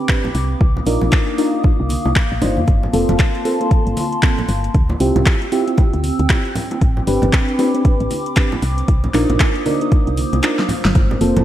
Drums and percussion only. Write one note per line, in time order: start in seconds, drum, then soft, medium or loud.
0.09 kick loud
0.09 clap loud
0.24 high bongo medium
0.24 low conga medium
0.35 open hi-hat medium
0.61 kick loud
0.77 high bongo soft
0.77 low conga medium
0.87 open hi-hat loud
1.01 low conga medium
1.12 kick loud
1.12 clap loud
1.12 high bongo medium
1.38 open hi-hat loud
1.64 kick loud
1.64 high bongo medium
1.89 open hi-hat loud
1.89 high conga medium
2.05 high bongo medium
2.16 kick loud
2.16 clap loud
2.42 open hi-hat loud
2.42 low conga loud
2.57 high bongo soft
2.57 high conga medium
2.67 kick loud
2.67 closed hi-hat medium
2.67 high bongo medium
2.83 low conga medium
2.93 open hi-hat loud
3.09 closed hi-hat soft
3.09 high bongo medium
3.09 low conga medium
3.19 kick loud
3.19 clap loud
3.19 closed hi-hat medium
3.35 closed hi-hat soft
3.45 open hi-hat medium
3.61 closed hi-hat soft
3.61 high bongo soft
3.71 kick loud
3.71 closed hi-hat medium
3.87 closed hi-hat soft
3.97 open hi-hat loud
3.97 high bongo medium
3.97 high conga medium
4.12 closed hi-hat soft
4.23 kick loud
4.23 clap loud
4.23 closed hi-hat medium
4.38 closed hi-hat soft
4.38 low conga medium
4.48 open hi-hat medium
4.48 high bongo medium
4.64 closed hi-hat medium
4.74 kick loud
4.74 closed hi-hat medium
4.89 high bongo medium
4.89 low conga medium
5.00 open hi-hat loud
5.16 closed hi-hat medium
5.16 low conga loud
5.26 kick loud
5.26 clap loud
5.26 closed hi-hat medium
5.41 closed hi-hat soft
5.41 high bongo soft
5.52 open hi-hat medium
5.68 closed hi-hat medium
5.78 kick loud
5.78 closed hi-hat medium
5.78 high bongo medium
5.93 closed hi-hat soft
6.04 open hi-hat loud
6.04 high conga medium
6.19 closed hi-hat medium
6.29 kick loud
6.29 clap loud
6.29 closed hi-hat medium
6.29 high bongo soft
6.45 closed hi-hat soft
6.55 open hi-hat medium
6.55 low conga medium
6.71 closed hi-hat medium
6.71 high bongo medium
6.81 kick loud
6.81 closed hi-hat medium
6.97 low conga medium
7.07 open hi-hat loud
7.22 closed hi-hat medium
7.22 high bongo medium
7.22 low conga medium
7.33 kick loud
7.33 clap loud
7.33 closed hi-hat medium
7.49 closed hi-hat soft
7.59 open hi-hat medium
7.59 high bongo medium
7.75 closed hi-hat medium
7.85 kick loud
7.85 closed hi-hat medium
8.00 closed hi-hat soft
8.11 open hi-hat loud
8.11 high bongo medium
8.11 high conga medium
8.26 closed hi-hat soft
8.36 kick loud
8.36 clap loud
8.36 closed hi-hat medium
8.52 closed hi-hat soft
8.52 high bongo medium
8.52 low conga medium
8.62 open hi-hat medium
8.78 closed hi-hat medium
8.88 kick loud
8.88 closed hi-hat medium
9.04 closed hi-hat soft
9.04 high bongo medium
9.04 low conga medium
9.14 clap medium
9.14 open hi-hat loud
9.30 closed hi-hat medium
9.30 low conga medium
9.40 kick loud
9.40 clap loud
9.40 closed hi-hat medium
9.40 high bongo medium
9.55 closed hi-hat soft
9.66 open hi-hat medium
9.66 high conga medium
9.81 closed hi-hat medium
9.92 kick loud
9.92 closed hi-hat medium
9.92 high bongo medium
10.07 closed hi-hat soft
10.17 open hi-hat loud
10.17 high conga medium
10.33 closed hi-hat medium
10.33 high bongo medium
10.43 clap loud
10.43 closed hi-hat medium
10.59 snare medium
10.59 closed hi-hat soft
10.69 open hi-hat medium
10.69 low conga medium
10.85 snare loud
10.85 closed hi-hat medium
10.85 high bongo soft
10.85 high conga medium
10.95 kick loud
10.95 closed hi-hat medium
10.95 high bongo medium
11.11 low conga loud
11.21 open hi-hat loud
11.36 closed hi-hat medium
11.36 high bongo medium
11.36 low conga loud